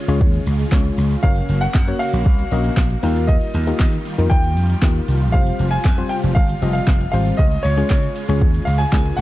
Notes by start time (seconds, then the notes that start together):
Already playing: C#3 G#3 F4 C#5
0.08 C#2 G#3 C#4 F4 G#4 C#5, closed hi-hat, shaker
0.21 D#2, kick, tambourine, shaker
0.34 closed hi-hat, tambourine, shaker
0.47 C#2, open hi-hat, tambourine, shaker
0.59 closed hi-hat, tambourine, shaker
0.72 C#2 G#3 C#4 F4 G#4 C#5, kick, snare, clap, tambourine, shaker
0.85 closed hi-hat, shaker
0.98 C#2, open hi-hat, tambourine, shaker
1.11 closed hi-hat, shaker
1.23 F#1 A#3 C#4 F#4 A#4 C#5 F5, kick, tambourine, shaker
1.36 closed hi-hat, shaker
1.49 F#1, open hi-hat, tambourine, shaker
1.61 F#5, closed hi-hat, shaker
1.74 F#2, kick, snare, clap, tambourine, shaker
1.87 A#3 C#4 F#4 A#4 C#5, closed hi-hat, shaker
1.99 F5, open hi-hat, tambourine, shaker
2.13 A#1, closed hi-hat, shaker
2.26 C2, kick, tambourine, shaker
2.39 closed hi-hat, tambourine, shaker
2.52 A#1 A#3 C#4 F#4 A#4 D#5, open hi-hat, tambourine, shaker
2.64 closed hi-hat, tambourine, shaker
2.77 A#1, kick, snare, clap, tambourine, shaker
2.90 closed hi-hat, shaker
3.03 D#2 D#3 G3 A#3 D#4 F4 G4 A#4, open hi-hat, tambourine, shaker
3.16 closed hi-hat, shaker
3.27 D#5, kick, tambourine, shaker
3.41 closed hi-hat, shaker
3.54 D#2, open hi-hat, tambourine, shaker
3.67 A#3 D#4 F4 G4 A#4, closed hi-hat, tambourine, shaker
3.79 D#3, kick, snare, clap, tambourine, shaker
3.93 closed hi-hat, shaker
4.05 open hi-hat, tambourine, shaker
4.18 F2 A#3 D#4 F4 G4 A#4, closed hi-hat, tambourine, shaker
4.30 D#2 G5, kick, tambourine, shaker
4.44 closed hi-hat, tambourine, shaker
4.57 F2, open hi-hat, tambourine, shaker
4.70 closed hi-hat, shaker
4.82 D#2 A#3 D#4 F4 G4 A#4, kick, snare, clap, tambourine, shaker
4.95 closed hi-hat, shaker
5.08 C2, open hi-hat, tambourine, shaker
5.21 closed hi-hat, shaker
5.32 F1 C3 G3 C4 F4 G4 C5 F5, kick, tambourine, shaker
5.46 closed hi-hat, shaker
5.59 F1, open hi-hat, tambourine, shaker
5.71 G#5, closed hi-hat, shaker
5.84 F2, kick, snare, clap, tambourine, shaker
5.98 G3 C4 F4 G4 C5, closed hi-hat, shaker
6.09 G5, open hi-hat, tambourine, shaker
6.24 F1, closed hi-hat, tambourine, shaker
6.35 G1 F5, kick, tambourine, shaker
6.49 closed hi-hat, shaker
6.62 F1 G3 C4 F4 G4 D#5, open hi-hat, tambourine, shaker
6.73 F5, closed hi-hat, tambourine, shaker
6.87 F1, kick, snare, clap, tambourine, shaker
7.01 closed hi-hat, shaker
7.12 G#1 G3 C4 F4 G4 C5 F5, open hi-hat, tambourine, shaker
7.26 closed hi-hat, shaker
7.37 C#2 C#3 G#3 D#5, kick, tambourine, shaker
7.52 closed hi-hat, shaker
7.63 C#2 C#5, open hi-hat, tambourine, shaker
7.77 G#3 C#4 F4 G#4 C#5, closed hi-hat, shaker
7.90 C#3, kick, snare, clap, tambourine, shaker
8.03 closed hi-hat, shaker
8.16 open hi-hat, tambourine, shaker
8.29 C#2 G#3 C#4 F4 G#4 C#5, closed hi-hat, tambourine, shaker
8.41 D#2, kick, tambourine, shaker
8.54 closed hi-hat, tambourine, shaker
8.65 C#2 F5, open hi-hat, tambourine, shaker
8.78 G#5, closed hi-hat, tambourine, shaker
8.92 C#2 G#3 C#4 F4 G#4 A#4, kick, snare, clap, tambourine, shaker
9.06 closed hi-hat, shaker
9.17 F#5